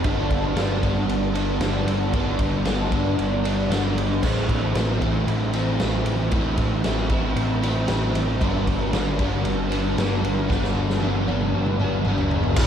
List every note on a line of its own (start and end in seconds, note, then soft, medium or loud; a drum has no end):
0.04 0.29 G1 loud
0.04 0.55 G2 medium
0.04 0.54 D3 medium
0.04 0.56 G3 loud
0.04 0.57 B3 loud
0.04 0.57 D4 loud
0.04 kick loud
0.04 ride loud
0.31 0.55 G1 medium
0.31 kick medium
0.31 ride medium
0.55 0.80 G1 medium
0.55 2.13 G2 medium
0.55 1.09 D3 medium
0.55 0.84 G3 loud
0.55 0.83 B3 loud
0.55 0.82 D4 loud
0.55 snare loud
0.55 ride medium
0.83 1.07 G1 medium
0.83 1.36 G3 medium
0.83 1.35 B3 medium
0.83 1.33 D4 medium
0.83 kick medium
0.83 ride medium
1.07 1.57 G1 loud
1.07 ride medium
1.34 1.61 G3 medium
1.34 1.62 B3 medium
1.34 1.63 D4 medium
1.34 ride medium
1.60 1.84 G1 medium
1.60 2.13 D3 medium
1.60 2.14 G3 medium
1.60 2.14 B3 medium
1.60 2.14 D4 medium
1.60 snare loud
1.60 ride loud
1.86 2.10 G1 medium
1.86 ride medium
2.13 2.37 G1 medium
2.13 2.64 G2 medium
2.13 2.64 D3 medium
2.13 2.66 G3 loud
2.13 2.65 B3 medium
2.13 2.66 D4 loud
2.13 kick loud
2.13 ride loud
2.39 2.63 G1 medium
2.39 kick medium
2.39 ride medium
2.64 2.89 G1 medium
2.64 3.18 G2 medium
2.64 3.18 D3 loud
2.64 2.94 G3 loud
2.64 2.92 B3 loud
2.64 2.91 D4 loud
2.64 snare loud
2.64 ride medium
2.92 3.16 G1 medium
2.92 3.46 G3 medium
2.92 3.44 B3 medium
2.92 3.43 D4 medium
2.92 kick medium
2.92 ride medium
3.18 3.66 G1 medium
3.18 ride medium
3.44 3.71 G3 medium
3.44 3.70 B3 medium
3.44 3.71 D4 medium
3.44 ride medium
3.69 3.94 G1 medium
3.69 4.21 D3 medium
3.69 4.24 G3 medium
3.69 4.22 B3 medium
3.69 4.22 D4 medium
3.69 snare loud
3.69 ride loud
3.96 4.20 G1 medium
3.96 ride medium
4.23 4.47 A1 medium
4.23 4.75 A2 medium
4.23 4.75 E3 loud
4.23 4.76 A3 loud
4.23 4.77 C4 loud
4.23 4.77 E4 loud
4.23 kick loud
4.23 crash loud
4.49 4.73 A1 medium
4.49 kick medium
4.49 ride medium
4.75 4.99 A1 medium
4.75 6.30 A2 medium
4.75 5.79 E3 loud
4.75 5.03 A3 loud
4.75 5.02 C4 medium
4.75 5.01 E4 loud
4.75 snare loud
4.75 ride loud
5.01 5.25 A1 medium
5.01 5.54 A3 medium
5.01 5.53 C4 medium
5.01 5.52 E4 medium
5.01 kick medium
5.01 ride medium
5.27 5.76 A1 medium
5.27 ride medium
5.53 5.79 A3 medium
5.53 5.80 C4 medium
5.53 5.80 E4 medium
5.53 ride medium
5.79 6.03 A1 medium
5.79 6.30 E3 medium
5.79 6.30 A3 medium
5.79 6.31 C4 medium
5.79 6.31 E4 medium
5.79 snare loud
5.79 ride medium
6.06 6.30 A1 medium
6.06 ride medium
6.31 6.56 A1 medium
6.31 6.83 A2 loud
6.31 6.83 E3 medium
6.31 6.83 A3 loud
6.31 6.84 C4 medium
6.31 6.84 E4 loud
6.31 kick loud
6.31 ride loud
6.58 6.82 A1 medium
6.58 kick medium
6.58 ride medium
6.84 7.08 A1 medium
6.84 7.36 A2 medium
6.84 7.36 E3 medium
6.84 7.10 A3 loud
6.84 7.09 C4 medium
6.84 7.08 E4 loud
6.84 snare loud
6.84 ride medium
7.09 7.34 A1 medium
7.09 7.63 A3 medium
7.09 7.63 C4 medium
7.09 7.61 E4 medium
7.09 kick medium
7.09 ride medium
7.36 7.85 A1 medium
7.36 ride medium
7.62 7.88 A3 medium
7.62 7.89 C4 medium
7.62 7.90 E4 medium
7.62 ride medium
7.88 8.13 A1 medium
7.88 8.40 E3 medium
7.88 8.40 A3 medium
7.88 8.40 C4 medium
7.88 8.41 E4 medium
7.88 snare loud
7.88 ride loud
8.15 8.39 A1 medium
8.15 ride medium
8.41 8.65 G1 medium
8.41 8.92 G2 medium
8.41 8.92 D3 loud
8.41 8.93 G3 loud
8.41 8.93 B3 loud
8.41 8.94 D4 loud
8.41 kick loud
8.41 ride loud
8.67 8.91 G1 medium
8.67 kick medium
8.67 ride medium
8.93 9.17 G1 medium
8.93 10.48 G2 medium
8.93 9.46 D3 loud
8.93 9.21 G3 medium
8.93 9.19 B3 loud
8.93 9.18 D4 medium
8.93 snare loud
8.93 ride medium
9.19 9.43 G1 medium
9.19 9.72 G3 medium
9.19 9.70 B3 medium
9.19 9.68 D4 medium
9.19 kick medium
9.19 ride medium
9.45 9.94 G1 loud
9.45 ride medium
9.70 9.98 G3 medium
9.70 9.97 B3 medium
9.70 9.98 D4 medium
9.70 ride medium
9.97 10.21 G1 medium
9.97 10.48 D3 medium
9.97 10.48 G3 medium
9.97 10.48 B3 medium
9.97 10.49 D4 medium
9.97 snare loud
9.97 ride loud
10.23 10.47 G1 medium
10.23 ride medium
10.48 10.74 G1 medium
10.48 10.99 G2 medium
10.48 10.99 D3 loud
10.48 11.00 G3 loud
10.48 11.00 B3 medium
10.48 11.01 D4 loud
10.48 kick loud
10.48 snare medium
10.64 snare medium
10.75 10.99 G1 loud
10.90 snare medium
11.00 11.25 G1 medium
11.00 11.53 G2 medium
11.00 11.53 D3 medium
11.00 11.28 G3 medium
11.00 11.27 B3 loud
11.00 11.26 D4 loud
11.00 high tom medium
11.27 11.52 G1 medium
11.27 11.81 G3 medium
11.27 11.80 B3 medium
11.27 11.79 D4 medium
11.27 high tom medium
11.41 mid tom medium
11.54 12.02 G1 medium
11.66 mid tom medium
11.80 12.06 G3 medium
11.80 12.07 B3 medium
11.80 12.07 D4 medium
11.80 mid tom medium
12.05 12.30 G1 medium
12.05 12.57 D3 medium
12.05 12.57 G3 medium
12.05 12.57 B3 medium
12.05 12.58 D4 medium
12.05 mid tom loud
12.18 floor tom medium
12.31 12.56 G1 medium
12.31 floor tom loud
12.44 floor tom medium
12.56 12.67 A1 loud
12.56 12.67 A2 loud
12.56 12.67 E3 loud
12.56 12.67 A3 loud
12.56 12.67 C4 loud
12.56 12.67 E4 loud
12.56 kick loud
12.56 crash loud